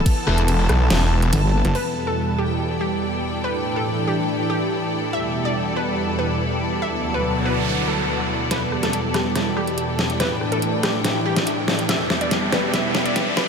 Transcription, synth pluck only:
1.75 B4
2.07 A4
2.38 G4
2.81 G4
3.44 B4
3.76 A4
4.07 G4
4.50 G4
5.13 E5
5.45 D5
5.76 B4
6.19 B4
6.82 E5
7.14 B4
7.45 B4
7.88 A4
8.51 B4
8.83 A4
9.14 G4
9.57 G4
10.20 B4
10.52 A4
10.83 G4
11.26 G4
11.89 E5
12.21 D5
12.52 B4
12.73 E5
13.05 D5
13.37 B4

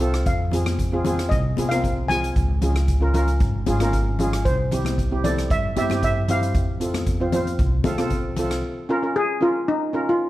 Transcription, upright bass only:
Already playing: C2
0.26 F2
1.31 C2
1.58 C2
2.36 C#2
3.41 G#1
3.67 G#1
4.46 C2
5.50 G2
5.77 G2
6.54 F2
7.59 C2

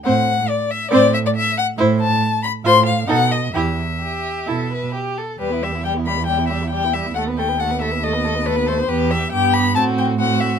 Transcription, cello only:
0.05 A2
0.91 A2
1.78 A2
2.64 A2
3.09 B2
3.54 E2
4.48 B2
5.40 E2
7.16 D#2
8.90 E2
9.34 G2
9.77 A2

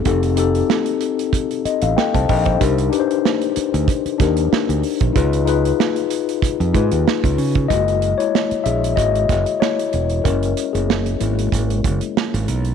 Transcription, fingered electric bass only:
0.06 F1
1.65 muted fingered electric bass stroke
1.82 A1
2.15 C2
2.29 A#1
2.61 C2
3.57 muted fingered electric bass stroke
3.74 D2
4.06 muted fingered electric bass stroke
4.20 D#2
4.52 muted fingered electric bass stroke
4.69 D2
5.01 A#1
5.16 C#2
6.60 F2
6.75 G#2
6.92 D#2
7.24 C#2
7.38 C#3
7.71 F#1
8.52 muted fingered electric bass stroke
8.66 A#1
8.97 G#1
9.29 F#1
9.94 E1
10.25 F#1
10.75 F#1
11.21 G#1
11.52 G#1
11.85 F#1
12.34 G#1
12.48 B1

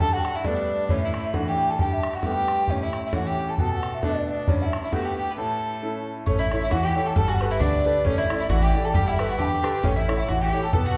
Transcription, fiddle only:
0.01 A4
0.15 F#4
0.26 F#4
0.35 E4
0.46 D4
0.90 C#4
1.04 E4
1.35 F#4
1.48 G4
1.71 A4
1.80 G4
2.15 F#4
2.24 G4
2.70 C#4
2.82 E4
3.05 E4
3.13 F#4
3.26 G4
3.48 A4
3.59 A4
4.03 D4
4.29 D4
4.49 C#4
4.62 E4
4.83 E4
4.93 F#4
5.02 F#4 G4
5.17 G4
5.31 B4
5.37 A4
6.28 C#4
6.40 E4
6.62 E4
6.72 F#4
6.84 G4
7.06 A4
7.16 A4
7.28 F#4
7.51 E4
7.61 D4
8.05 C#4
8.18 E4
8.39 E4
8.49 F#4
8.62 G4
8.84 A4
8.95 G4
9.07 E4
9.40 G4
9.83 C#4
9.97 E4
10.18 E4
10.28 F#4
10.41 G4
10.74 A4
10.85 F#4

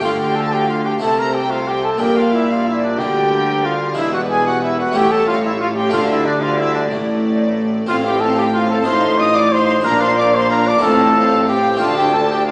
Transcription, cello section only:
0.05 D3
1.03 C3
2.01 A#2
3.00 D3
3.98 E2
4.96 A2
5.94 D3
6.91 A2
7.89 A2
8.86 A2
9.85 A#2
10.82 A2
11.80 D2

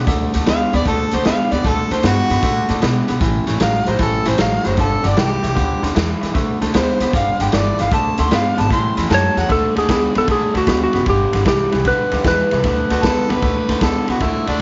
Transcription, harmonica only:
0.49 F5
0.75 D5
0.88 A4
1.14 C5
1.26 F5
1.52 D5
1.67 A4
1.93 C5
2.06 F#4
3.63 F5
3.88 C5
4.01 A4
4.28 C5
4.40 F5
4.66 C5
4.80 A4
5.07 D5
5.20 G4
6.76 C5
7.15 F5
7.41 G5
7.54 D5
7.81 F5
7.94 A5
8.20 C6
8.34 F5
8.60 A5
8.72 C6
9.11 A5
9.38 F#5
12.91 F#4
13.03 A4
13.31 B4
13.83 A4
14.10 F#4
14.22 E4
14.48 D4

